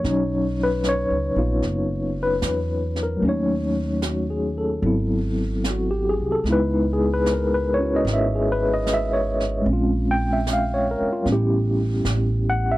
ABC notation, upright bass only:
X:1
M:4/4
L:1/8
Q:"Swing" 1/4=75
K:Dblyd
V:1 name="Upright bass" clef=bass
=B,,,2- (3B,,, ^C,, ^A,,, ^F,,,2 _F,,2 | E,,4 A,,,3 C,, | D,,4 A,,,4 | B,,,3 z =A,,,2 A,,,2 |]